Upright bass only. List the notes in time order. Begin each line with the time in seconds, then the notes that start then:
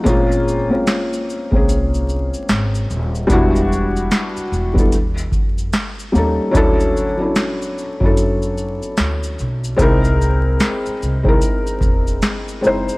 0.06 A#1
1.53 C2
2.50 G#1
2.90 D#1
3.30 E1
4.37 muted upright bass stroke
4.52 E1
4.93 D#2
5.33 F2
6.15 D#2
6.55 D2
8.01 F#2
8.99 D2
9.40 B1
9.79 C2
10.87 muted upright bass stroke
11.03 C2
11.81 E1
12.65 F#1